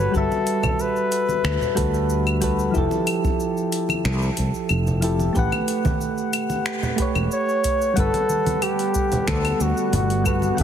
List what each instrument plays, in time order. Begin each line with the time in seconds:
Already playing: synth keys G3 F#4 A4 B4, muted trumpet B4
0.11 fretless electric bass G1, synth keys G3 F#4 A4, kick, shaker
0.16 muted trumpet A4, synth keys E5
0.31 muted conga, shaker
0.47 open hi-hat, shaker
0.63 kick, muted conga, high conga, low conga, claves, shaker
0.79 muted trumpet B4, shaker
0.96 shaker
1.12 open hi-hat, shaker
1.29 muted conga, shaker
1.44 fretless electric bass D2, finger snap, claves, shaker
1.61 low conga, shaker
1.75 fretless electric bass D2, synth keys G3 F#4 A4 B4, kick, open hi-hat, shaker
1.94 shaker
2.10 shaker
2.27 claves, shaker
2.41 synth keys G3 F#4 A4 B4, kick, open hi-hat, shaker
2.59 shaker
2.71 fretless electric bass F1, synth keys F3 E4, kick, shaker
2.76 synth keys G4 A4
2.91 muted conga, shaker
3.07 open hi-hat, claves, shaker
3.24 kick, muted conga, high conga, shaker
3.40 shaker
3.57 shaker
3.72 open hi-hat, shaker
3.89 muted conga, claves, shaker
4.05 fretless electric bass C2, finger snap, shaker
4.22 shaker
4.37 fretless electric bass C2, kick, open hi-hat, shaker
4.54 shaker
4.69 fretless electric bass F1, claves, shaker
4.87 low conga, shaker
5.01 synth keys F3 E4 G4 A4, open hi-hat, shaker
5.20 muted conga, shaker
5.33 fretless electric bass A1, synth keys A3 G4 B4, kick, shaker
5.39 synth keys F#5
5.52 muted conga, claves, shaker
5.68 open hi-hat, shaker
5.85 kick, muted conga, high conga, low conga, shaker
6.01 shaker
6.18 shaker
6.33 open hi-hat, claves, shaker
6.50 muted conga, shaker
6.66 finger snap, shaker
6.83 low conga, shaker
6.96 synth keys A3 G4 B4, kick, open hi-hat, shaker
7.02 synth keys C#5
7.15 fretless electric bass E1, claves, shaker
7.32 muted trumpet C#5, shaker
7.49 shaker
7.64 kick, open hi-hat, shaker
7.81 shaker
7.94 fretless electric bass G1, ambient pad D3 G3 A3 F#5, synth keys G3 F#5, kick, open hi-hat, shaker
7.98 ambient pad B3, muted trumpet A4, synth keys A4 B4
8.14 open hi-hat, muted conga, shaker
8.29 high conga, shaker
8.46 open hi-hat, muted conga, high conga, shaker
8.62 muted trumpet G4, open hi-hat, claves, shaker
8.79 open hi-hat, shaker
8.94 kick, shaker
9.12 open hi-hat, muted conga, low conga, shaker
9.28 fretless electric bass D2, muted trumpet A4, finger snap, kick, open hi-hat, shaker
9.45 open hi-hat, claves, shaker
9.60 fretless electric bass D2, muted trumpet F#4, shaker
9.77 shaker
9.93 fretless electric bass G1, muted trumpet F#4, open hi-hat, low conga, shaker
10.10 open hi-hat, shaker
10.24 synth keys G3 F#4 A4 B4, muted trumpet F#4, kick, claves, shaker
10.42 muted conga, shaker
10.55 fretless electric bass G1, synth keys G3 F#5, kick, open hi-hat, shaker
10.59 muted trumpet G4, synth keys A4